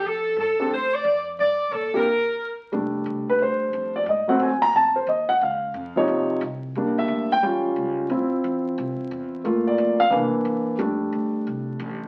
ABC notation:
X:1
M:4/4
L:1/8
Q:"Swing" 1/4=178
K:F
V:1 name="Saxophone section"
A2 A2 c d2 z | d2 A B4 z | z8 | z8 |
z8 | z8 | z8 | z8 |
z8 |]
V:2 name="Grand piano"
z3 [CDGA] z4 | z3 [C,B,DEG] z4 | z3 =B c3 d | [d_e] _g _a b =a c e g |
f3 _d3 z2 | z e2 g z4 | z8 | z d2 f z4 |
z8 |]
V:3 name="Grand piano"
z8 | z8 | [G,A,D]8 | z [_G,A,C] z6 |
z3 [C,F,_E]3 z2 | [G,B,D]3 z [G,^CF]4 | [CEF]8 | [A,B,F]3 z [E,B,D]4 |
[G,A,D]8 |]
V:4 name="Upright bass" clef=bass
F,,2 G,,2 A,,2 F,,2 | G,,2 B,,2 z4 | F,,,2 C,, z D,,2 F,,2 | _A,, z =A,,2 F,,2 _E,,2 |
_D,,2 F,,2 _E,, z C,,2 | (3E,, D,, B,,, D,,2 A,,,2 ^C,,2 | D,, z E,,2 C,, z E,,2 | G,,2 F,,2 C,, z E,,2 |
F,,2 D,,2 C,,2 A,,,2 |]